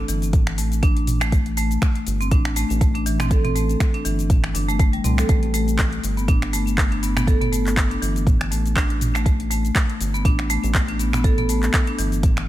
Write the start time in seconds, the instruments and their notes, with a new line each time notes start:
0.08 analog synth bass G1, marimba E3, open hi-hat, shaker
0.22 closed hi-hat, shaker
0.33 kick, closed hi-hat, mid tom, shaker
0.47 finger snap, closed hi-hat
0.58 analog synth bass A1, marimba A3, open hi-hat, shaker
0.72 closed hi-hat, shaker
0.83 marimba D4, kick, closed hi-hat, shaker
0.97 closed hi-hat
1.07 mid tom, open hi-hat, shaker
1.21 marimba A3, finger snap, shaker
1.32 marimba A3, kick, closed hi-hat, shaker
1.46 closed hi-hat
1.57 marimba A3, open hi-hat, shaker
1.71 closed hi-hat, shaker
1.82 finger snap, kick, closed hi-hat, shaker
1.95 closed hi-hat
2.07 analog synth bass G1, open hi-hat, shaker
2.21 marimba C4, closed hi-hat, shaker
2.31 analog synth bass A1, marimba D4, kick, closed hi-hat, mid tom, shaker
2.45 finger snap, closed hi-hat
2.56 marimba A3, open hi-hat, shaker
2.70 analog synth bass A1, closed hi-hat, shaker
2.81 marimba A3, kick, closed hi-hat, shaker
2.95 marimba D4, closed hi-hat
3.06 marimba E3, open hi-hat, shaker
3.20 marimba C4, finger snap, mid tom, shaker
3.31 marimba A4, kick, closed hi-hat, shaker
3.44 marimba C4, closed hi-hat, mid tom
3.55 marimba A3, open hi-hat, shaker
3.69 closed hi-hat, shaker
3.80 finger snap, kick, closed hi-hat, shaker
3.94 marimba D4, closed hi-hat
4.05 analog synth bass G1, marimba E3, open hi-hat, shaker
4.19 closed hi-hat, shaker
4.30 kick, closed hi-hat, mid tom, shaker
4.44 finger snap, closed hi-hat
4.55 analog synth bass G1, marimba D4, open hi-hat, shaker
4.68 marimba A3, closed hi-hat, shaker
4.79 marimba A3, kick, closed hi-hat, shaker
4.93 marimba G3, closed hi-hat
5.04 analog synth bass C2, marimba C4, mid tom, open hi-hat, shaker
5.18 marimba A4, finger snap, closed hi-hat, shaker
5.29 analog synth bass A1, marimba A3, kick, closed hi-hat, shaker
5.43 closed hi-hat
5.54 marimba A3, open hi-hat, shaker
5.68 closed hi-hat, shaker
5.79 finger snap, kick, clap, closed hi-hat, shaker
5.93 closed hi-hat
6.03 analog synth bass G1, open hi-hat, shaker
6.17 marimba B3, closed hi-hat, shaker
6.28 marimba D4, kick, closed hi-hat, mid tom, shaker
6.42 finger snap, closed hi-hat
6.53 marimba A3, open hi-hat, shaker
6.67 closed hi-hat, shaker
6.78 marimba A3, kick, clap, closed hi-hat, shaker
6.92 marimba D4, closed hi-hat
7.03 marimba B3, open hi-hat, shaker
7.16 marimba B3, finger snap, mid tom, shaker
7.27 marimba A4, kick, closed hi-hat, shaker
7.41 marimba B3, closed hi-hat, mid tom
7.52 marimba A3, open hi-hat, shaker
7.67 clap, closed hi-hat, shaker
7.77 finger snap, kick, clap, closed hi-hat, shaker
7.91 marimba D4, closed hi-hat
8.02 analog synth bass G1, marimba E3, open hi-hat, shaker
8.16 closed hi-hat, shaker
8.27 kick, closed hi-hat, mid tom, shaker
8.41 finger snap, closed hi-hat
8.51 analog synth bass A1, marimba A3, open hi-hat, shaker
8.66 closed hi-hat, shaker
8.76 marimba D4, kick, clap, closed hi-hat, shaker
8.90 closed hi-hat
9.01 mid tom, open hi-hat, shaker
9.15 marimba A3, finger snap, shaker
9.26 marimba A3, kick, closed hi-hat, shaker
9.40 closed hi-hat
9.51 marimba A3, open hi-hat, shaker
9.65 closed hi-hat, shaker
9.75 finger snap, kick, clap, closed hi-hat, shaker
9.90 closed hi-hat
10.00 analog synth bass G1, open hi-hat, shaker
10.14 marimba B3, closed hi-hat, shaker
10.25 analog synth bass A1, marimba D4, kick, closed hi-hat, mid tom, shaker
10.39 finger snap, closed hi-hat
10.50 marimba A3, open hi-hat, shaker
10.63 analog synth bass A1, closed hi-hat, shaker
10.75 marimba A3, kick, clap, closed hi-hat, shaker
10.88 marimba D4, closed hi-hat
10.99 marimba B3, open hi-hat, shaker
11.13 marimba B3, finger snap, mid tom, shaker
11.24 marimba A4, kick, closed hi-hat, shaker
11.38 marimba B3, closed hi-hat, mid tom
11.49 marimba A3, open hi-hat, shaker
11.63 clap, closed hi-hat, shaker
11.74 finger snap, kick, clap, closed hi-hat, shaker
11.87 marimba D4, closed hi-hat
11.99 analog synth bass G1, marimba E3, open hi-hat, shaker
12.12 closed hi-hat, shaker
12.23 kick, closed hi-hat, mid tom, shaker
12.37 finger snap, closed hi-hat